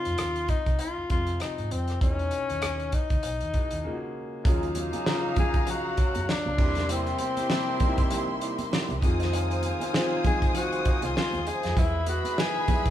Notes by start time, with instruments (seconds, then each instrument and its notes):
Already playing: grand piano C3 F3 G#3 D#4, tenor saxophone F4
0.05 fingered electric bass F2, closed hi-hat
0.18 fingered electric bass D#2, cross-stick, closed hi-hat
0.36 closed hi-hat
0.48 tenor saxophone D#4, kick, closed hi-hat
0.66 fingered electric bass C2, kick, closed hi-hat
0.79 tenor saxophone F4, closed hi-hat
0.98 muted fingered electric bass stroke
1.09 fingered electric bass F2, grand piano C3 F3 G#3 C4, tenor saxophone F4, kick, closed hi-hat
1.27 closed hi-hat
1.40 tenor saxophone D#4, cross-stick, closed hi-hat
1.58 fingered electric bass G#2, closed hi-hat
1.71 fingered electric bass F2, tenor saxophone C4, closed hi-hat
1.88 cross-stick, closed hi-hat
2.01 fingered electric bass E2, grand piano B2 E3 G#3 D4, tenor saxophone C#4, kick, closed hi-hat
2.10 grand piano D#4
2.19 closed hi-hat
2.31 closed hi-hat
2.49 fingered electric bass D#2, closed hi-hat
2.62 fingered electric bass D#2, cross-stick, closed hi-hat
2.80 closed hi-hat
2.92 tenor saxophone D#4, kick, closed hi-hat
3.10 fingered electric bass C#2, kick, closed hi-hat
3.23 fingered electric bass B1, closed hi-hat
3.40 fingered electric bass D#2, closed hi-hat
3.53 grand piano B2 E3 G#3 D#4, kick, closed hi-hat
3.71 fingered electric bass D#2, closed hi-hat
3.84 grand piano C#3 G#3 A#3 F4
3.92 grand piano F#4
4.44 fingered electric bass D#2, grand piano C#3 F#3 G#3 F4, french horn section D#3 F#3 G#3 C#5 F5, clean electric guitar F#3 C#4 F4 G#4, horn section G#3 A#3 D#4, string section F#4 F5 A#5, kick, closed hi-hat, muted conga
4.63 closed hi-hat
4.75 closed hi-hat, muted conga, high conga
4.93 clean electric guitar F#3 C#4 F4 G#4, closed hi-hat, high conga
5.05 grand piano C#3 F#3 G#3 F4, clean electric guitar F#3 C#4 F4 G#4, snare, muted conga
5.35 grand piano C#3 F#3 G#3 F5, muted clean electric guitar stroke, kick, closed hi-hat, high conga, low conga
5.40 tenor saxophone G#4
5.54 muted clean electric guitar stroke, kick, closed hi-hat
5.67 tenor saxophone F#4, closed hi-hat, muted conga, low conga
5.85 muted clean electric guitar stroke
5.97 clean electric guitar F#3 C#4 F4 A#4, muted fingered electric bass stroke, kick, closed hi-hat, muted conga
6.15 fingered electric bass F#2, muted clean electric guitar stroke, closed hi-hat, high conga
6.28 tenor saxophone D4, muted clean electric guitar stroke, muted fingered electric bass stroke, snare, muted conga
6.46 fingered electric bass C#2, muted clean electric guitar stroke, high conga
6.57 fingered electric bass E2, grand piano C3 G3 A#3 E4, french horn section C3 E3 G3 A#3 E4, clean electric guitar A#3 E4 G4 D5, horn section C4 E4 G4, string section G4 E5 C6, kick, crash, muted conga
6.75 clean electric guitar A#3 E4 G4 D5, snare, closed hi-hat
6.89 clean electric guitar A#3 E4 G4 C5, tenor saxophone C4, closed hi-hat
7.06 closed hi-hat
7.18 muted clean electric guitar stroke, closed hi-hat, muted conga, high conga
7.37 clean electric guitar A#3 E4 G4 C5, closed hi-hat, high conga
7.49 grand piano C3 G3 A#3 E4, muted clean electric guitar stroke, snare
7.69 muted clean electric guitar stroke
7.79 grand piano C3 G3 A#3 D#4, clean electric guitar A#3 E4 G4 C5, kick, closed hi-hat, high conga, low conga
7.88 grand piano E4
7.98 muted clean electric guitar stroke, kick, closed hi-hat
8.10 clean electric guitar A#3 E4 G4 C5, closed hi-hat, muted conga, low conga
8.29 muted clean electric guitar stroke
8.41 clean electric guitar A#3 E4 G4 D5, closed hi-hat, muted conga
8.58 muted clean electric guitar stroke, closed hi-hat, high conga
8.72 clean electric guitar A#3 E4 G4 D5, snare, muted conga
8.89 fingered electric bass C2, closed hi-hat, high conga
9.01 fingered electric bass F2, grand piano D#3 G#3 C4 F4, french horn section D#3 G#3 F5, horn section D#4 A#4 F5, string section C5 G#5 D#6, muted clean electric guitar stroke, kick, closed hi-hat, muted conga
9.20 clean electric guitar G#3 D#4 F4 D#5, snare, closed hi-hat
9.33 clean electric guitar G#3 D#4 F4 C5, closed hi-hat, muted conga
9.51 closed hi-hat
9.63 muted clean electric guitar stroke, closed hi-hat, muted conga, high conga
9.80 clean electric guitar G#3 D#4 F4 C5, closed hi-hat, high conga
9.93 grand piano D#3 G#3 C4 F4, clean electric guitar G#3 D#4 F4 C5, snare, muted conga
10.23 grand piano D#3 G3 C4 D#4, tenor saxophone G#4, muted clean electric guitar stroke, kick, closed hi-hat, high conga, low conga
10.30 grand piano G#3
10.42 muted clean electric guitar stroke, kick, closed hi-hat
10.54 tenor saxophone F#4, closed hi-hat, muted conga, low conga
10.72 muted clean electric guitar stroke, closed hi-hat
10.85 clean electric guitar G#3 D#4 F4 D#5, muted fingered electric bass stroke, kick, closed hi-hat, muted conga
11.02 fingered electric bass C2, tenor saxophone F4, muted clean electric guitar stroke, closed hi-hat, high conga
11.16 tenor saxophone F4, muted fingered electric bass stroke, muted clean electric guitar stroke, snare, muted conga
11.33 fingered electric bass D#2, muted clean electric guitar stroke, closed hi-hat, high conga
11.46 clean electric guitar G#3 D#4 F4 D#5, tenor saxophone G#4, closed hi-hat
11.63 fingered electric bass F2, clean electric guitar G#3 D#4 F4 D#5, snare, closed hi-hat
11.76 french horn section B2 E3 G#4, grand piano E3 G#3 B3 E4, clean electric guitar B3 D#4 G#4 B4, horn section E4 G#4 B4, tenor saxophone E4, string section G#4 E5 B5, kick, closed hi-hat, low conga
12.06 tenor saxophone F#4, muted clean electric guitar stroke, closed hi-hat, high conga
12.25 clean electric guitar B3 D#4 G#4 B4, closed hi-hat, high conga
12.36 grand piano D#3 G#3 B3 E4, tenor saxophone G#4, muted clean electric guitar stroke, snare, muted conga
12.56 muted clean electric guitar stroke
12.67 grand piano E3 G3 B3 E4, clean electric guitar B3 D#4 G#4 B4, kick, closed hi-hat, muted conga, high conga, low conga
12.74 grand piano G#3
12.85 muted clean electric guitar stroke, kick, closed hi-hat